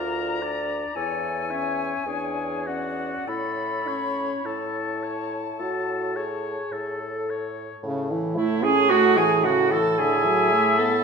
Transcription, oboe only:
0.00 0.44 A#4 soft
0.43 0.96 D5 soft
0.96 1.52 A4 medium
1.50 2.06 C#5 soft
2.06 2.68 G#4 soft
2.67 3.27 F#4 soft
3.27 3.89 A4 soft
3.88 4.47 C#5 soft
4.45 5.05 A4 soft
5.03 5.42 C#5 soft
5.59 6.18 A4 soft
6.16 6.74 C#5 soft
6.72 7.31 A4 soft
7.30 7.84 C#5 soft
10.00 11.04 E5 loud

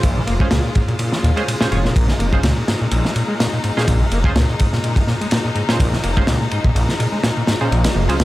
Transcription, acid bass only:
0.04 0.18 A#2 medium
0.17 0.23 F3 loud
0.27 0.35 A#3 medium
0.40 0.47 G#3 loud
0.51 0.62 A#2 medium
0.64 0.70 A#2 medium
0.75 0.83 G#2 medium
0.88 0.94 A#2 medium
0.99 1.13 A#2 medium
1.12 1.18 F3 loud
1.23 1.31 A#2 loud
1.36 1.43 G#3 loud
1.47 1.55 A#2 medium
1.61 1.67 A#2 medium
1.71 1.79 G#2 medium
1.84 1.94 A#2 medium
1.95 2.09 A#2 medium
2.08 2.14 F3 loud
2.19 2.27 A#3 medium
2.32 2.39 G#3 loud
2.43 2.54 A#2 medium
2.57 2.63 A#2 medium
2.68 2.75 G#2 medium
2.81 2.87 A#2 medium
2.92 3.06 A#2 medium
3.04 3.11 F3 loud
3.15 3.23 A#2 loud
3.28 3.35 G#3 loud
3.40 3.47 A#2 medium
3.53 3.59 A#2 medium
3.64 3.71 G#2 medium
3.77 3.86 A#2 medium
3.88 4.02 A#2 medium
4.01 4.07 F3 loud
4.12 4.19 A#3 medium
4.25 4.31 G#3 loud
4.36 4.47 A#2 medium
4.49 4.55 A#2 medium
4.60 4.67 G#2 medium
4.73 4.79 A#2 loud
4.84 4.98 A#2 medium
4.97 5.03 F3 loud
5.08 5.15 A#2 loud
5.21 5.27 G#3 loud
5.32 5.39 A#2 medium
5.45 5.51 A#2 medium
5.55 5.63 G#2 medium
5.69 5.78 A#2 medium
5.79 5.94 A#2 medium
5.92 5.99 F3 loud
6.03 6.11 A#3 medium
6.16 6.23 G#3 loud
6.27 6.39 A#2 medium
6.40 6.47 A#2 medium
6.52 6.59 G#2 medium
6.65 6.71 A#2 loud
6.75 6.90 A#2 medium
6.88 6.95 F3 loud
6.99 7.07 A#2 loud
7.12 7.19 G#3 loud
7.23 7.31 A#2 medium
7.37 7.43 A#2 medium
7.48 7.55 G#2 medium
7.61 7.70 A#2 medium
7.71 7.86 A#2 medium
7.85 7.91 F3 loud
7.96 8.03 A#3 medium
8.09 8.15 G#3 loud
8.20 8.24 A#2 medium

